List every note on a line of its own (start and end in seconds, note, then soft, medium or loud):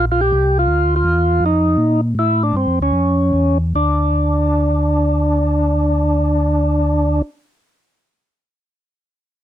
0.00 0.31 A#1 medium
0.12 0.21 F4 medium
0.21 0.58 G4 loud
0.32 0.68 C2 medium
0.59 0.95 F4 medium
0.68 1.04 D2 medium
0.96 1.45 F4 medium
1.04 1.40 E2 medium
1.40 1.77 F2 medium
1.46 2.01 D#4 medium
1.77 2.14 A#2 medium
2.15 2.52 A2 medium
2.15 2.43 E4 medium
2.43 2.56 D4 medium
2.54 2.66 G2 medium
2.54 2.79 C4 medium
2.67 2.80 F2 medium
2.80 2.92 D2 medium
2.80 3.58 C#4 medium
2.92 3.32 F2 medium
3.33 3.74 E2 medium
3.75 7.21 D2 medium
3.75 7.22 D4 medium